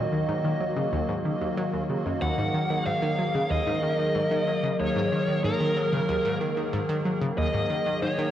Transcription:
Already playing: ambient pad D#3 F#3 A#3 F#4 D#5
0.12 synth arpeggio sound D#3
0.28 synth arpeggio sound G#2
0.44 synth arpeggio sound D#3
0.60 synth arpeggio sound F#3
0.77 synth arpeggio sound C#3
0.93 synth arpeggio sound D#2
1.09 synth arpeggio sound G#2
1.25 synth arpeggio sound D#3
1.41 synth arpeggio sound D#2
1.57 synth arpeggio sound F#3
1.73 synth arpeggio sound D#2
1.89 synth arpeggio sound C#3
2.06 synth arpeggio sound F#2
2.22 synth arpeggio sound D#2, ambient pad G#4 A#4, lead electric guitar F#5
2.38 synth arpeggio sound G#2
2.54 synth arpeggio sound D#3
2.70 synth arpeggio sound D#3
2.86 synth arpeggio sound G#2, lead electric guitar F5
3.02 synth arpeggio sound D#3
3.18 synth arpeggio sound F#3
3.34 synth arpeggio sound C#3
3.51 synth arpeggio sound D#2, lead electric guitar D#5
3.67 synth arpeggio sound G#2
3.83 synth arpeggio sound D#3
3.99 synth arpeggio sound D#3
4.15 synth arpeggio sound G#2
4.31 synth arpeggio sound D#3
4.47 synth arpeggio sound F#3
4.64 synth arpeggio sound C#3
4.80 synth arpeggio sound D#2, lead electric guitar C#5
4.96 synth arpeggio sound G#2
5.12 synth arpeggio sound D#3
5.28 synth arpeggio sound D#3
5.44 synth arpeggio sound G#2, lead electric guitar A#4
5.60 synth arpeggio sound D#3
5.76 synth arpeggio sound F#3
5.93 synth arpeggio sound C#3
6.09 synth arpeggio sound D#2
6.25 synth arpeggio sound G#2
6.41 synth arpeggio sound D#3
6.57 synth arpeggio sound D#3
6.73 synth arpeggio sound G#2
6.89 synth arpeggio sound D#3
7.06 synth arpeggio sound F#3
7.22 synth arpeggio sound C#3
7.38 synth arpeggio sound D#2, ambient pad D#5, lead electric guitar D#5
7.54 synth arpeggio sound G#2
7.70 synth arpeggio sound D#3
7.86 synth arpeggio sound D#3
8.02 synth arpeggio sound G#2, lead electric guitar C#5
8.19 synth arpeggio sound D#3

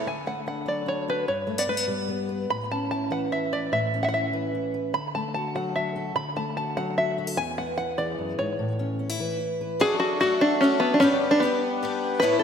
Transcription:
0.06 steel-string acoustic guitar D3, five-string banjo G#5
0.26 steel-string acoustic guitar A3, five-string banjo F#5
0.47 steel-string acoustic guitar D4, five-string banjo F#5
0.65 steel-string acoustic guitar F#3 F#4, five-string banjo D5
0.86 steel-string acoustic guitar D4, five-string banjo C#5
1.08 steel-string acoustic guitar F#4, five-string banjo B4
1.28 steel-string acoustic guitar G2, five-string banjo C#5
1.47 steel-string acoustic guitar A3
1.58 steel-string acoustic guitar B3, five-string banjo D5
1.67 steel-string acoustic guitar A3, five-string banjo B4
1.77 steel-string acoustic guitar B3
1.88 steel-string acoustic guitar G3 B3
2.09 steel-string acoustic guitar B3
2.29 steel-string acoustic guitar B4
2.50 steel-string acoustic guitar A2, five-string banjo B5
2.71 steel-string acoustic guitar C#4, five-string banjo A5
2.91 steel-string acoustic guitar E4, five-string banjo A5
3.10 steel-string acoustic guitar E3 B4, five-string banjo F#5
3.32 steel-string acoustic guitar E4, five-string banjo E5
3.53 steel-string acoustic guitar B4, five-string banjo D5
3.72 steel-string acoustic guitar A2, five-string banjo E5
3.94 steel-string acoustic guitar C#4
4.03 five-string banjo E5 F#5
4.09 five-string banjo F#5
4.14 steel-string acoustic guitar E4, five-string banjo E5
4.33 steel-string acoustic guitar E3 B4
4.55 steel-string acoustic guitar E4
4.74 steel-string acoustic guitar B4
4.94 steel-string acoustic guitar D3, five-string banjo B5
5.15 steel-string acoustic guitar A3, five-string banjo A5
5.34 steel-string acoustic guitar F#4, five-string banjo A5
5.55 steel-string acoustic guitar F#3 A4, five-string banjo F#5
5.76 steel-string acoustic guitar F#4, five-string banjo E5
5.96 steel-string acoustic guitar A4
6.15 steel-string acoustic guitar D3, five-string banjo B5
6.36 steel-string acoustic guitar A3, five-string banjo A5
6.57 steel-string acoustic guitar F#4, five-string banjo A5
6.77 steel-string acoustic guitar F#3 A4, five-string banjo F#5
6.98 steel-string acoustic guitar F#4, five-string banjo E5
7.18 steel-string acoustic guitar F#4
7.27 steel-string acoustic guitar A4
7.37 steel-string acoustic guitar E2, five-string banjo G#5
7.58 steel-string acoustic guitar B3, five-string banjo F#5
7.78 steel-string acoustic guitar E4, five-string banjo F#5
7.98 steel-string acoustic guitar E3 G#4, five-string banjo D5
8.19 steel-string acoustic guitar F#2
8.39 steel-string acoustic guitar G#2, five-string banjo C#5
8.59 steel-string acoustic guitar A2
8.79 steel-string acoustic guitar C#4
8.99 steel-string acoustic guitar C#4
9.09 steel-string acoustic guitar E4
9.20 steel-string acoustic guitar E3 B4
9.40 steel-string acoustic guitar E4
9.61 steel-string acoustic guitar B4
9.80 twelve-string acoustic guitar D3 F#3 A3 D4 F#4, harmonium F#4 A4 F#5 A5, five-string banjo G#4
10.00 five-string banjo F#4
10.20 twelve-string acoustic guitar F#3 A3 D4 F#4, five-string banjo F#4
10.41 five-string banjo D4
10.61 twelve-string acoustic guitar F#3 A3 D4 F#4, five-string banjo C#4
10.80 five-string banjo B3
10.94 five-string banjo D4
11.00 twelve-string acoustic guitar G2 D3 G3 B3 G4, five-string banjo C#4, harmonium G4 B4 B5
11.31 five-string banjo D4
11.40 twelve-string acoustic guitar G3 B3 D4, five-string banjo B3
11.45 twelve-string acoustic guitar G4
11.83 twelve-string acoustic guitar G3 B3 D4 G4
12.20 twelve-string acoustic guitar A2 E3 B3 C#4, harmonium E4 C#5 A5, five-string banjo B4
12.24 twelve-string acoustic guitar E4
12.39 five-string banjo A4

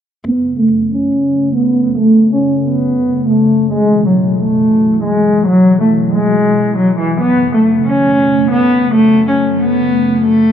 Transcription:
0.25 ambient pad F#2 C#3 A3, cello B3
0.59 cello A3
0.91 cello C#4
1.55 cello B3
1.99 cello A3
2.32 cello C#4
2.64 cello B3
3.30 cello A3
3.73 ambient pad B2 E3 F#3, cello G#3
4.06 cello F#3
4.38 cello A3
5.03 cello G#3
5.47 cello F#3
5.80 cello A3
6.12 cello G#3
6.77 cello F#3
6.99 cello E3
7.21 ambient pad F#2 C#3 A3, cello B3
7.54 cello A3
7.86 cello C#4
8.51 cello B3
8.95 cello A3
9.28 cello C#4
9.60 cello B3
10.25 cello A3

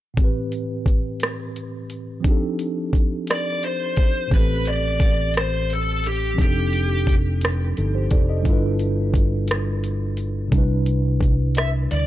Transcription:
0.14 tine electric piano A2 E3, kick, closed hi-hat
0.19 tine electric piano C4 G4
0.24 tine electric piano B4
0.52 closed hi-hat
0.86 kick, closed hi-hat
1.20 cross-stick, closed hi-hat
1.56 closed hi-hat
1.90 closed hi-hat
2.20 tine electric piano F3 C4
2.24 tine electric piano D4 D#4 G4, kick, closed hi-hat
2.31 tine electric piano A4
2.59 closed hi-hat
2.93 kick, closed hi-hat
3.27 lead electric guitar D5, cross-stick, closed hi-hat
3.63 lead electric guitar C5, closed hi-hat
3.97 kick, closed hi-hat
4.27 tine electric piano A2 E3
4.31 fingered electric bass A1, tine electric piano C4 G4, lead electric guitar B4, kick, closed hi-hat
4.38 tine electric piano A4
4.65 lead electric guitar D5, closed hi-hat
5.00 kick, closed hi-hat
5.34 lead electric guitar C5, cross-stick, closed hi-hat
5.70 lead electric guitar A4, closed hi-hat
6.04 lead electric guitar G4, closed hi-hat
6.34 tine electric piano F3 C4
6.38 fingered electric bass F1, tine electric piano D4 D#4 G4, lead electric guitar G4, kick, closed hi-hat
6.44 tine electric piano A4
6.73 closed hi-hat
7.07 kick, closed hi-hat
7.41 cross-stick, closed hi-hat
7.77 fingered electric bass G1, tine electric piano D#4 A4, closed hi-hat
7.95 tine electric piano G4 C5
8.11 fingered electric bass F1, tine electric piano A4 D5, kick, closed hi-hat
8.30 tine electric piano A4 D#5
8.42 tine electric piano G3 D4, kick, closed hi-hat
8.46 fingered electric bass G1, tine electric piano E4 F4
8.50 tine electric piano A4 B4
8.79 closed hi-hat
9.14 kick, closed hi-hat
9.48 cross-stick, closed hi-hat
9.84 closed hi-hat
10.17 closed hi-hat
10.48 tine electric piano C3 G3, kick
10.52 fingered electric bass C2, tine electric piano D4 E4, closed hi-hat
10.58 tine electric piano B4
10.86 closed hi-hat
11.21 kick, closed hi-hat
11.55 lead electric guitar E5, cross-stick, closed hi-hat
11.91 fingered electric bass D2, lead electric guitar D5, closed hi-hat

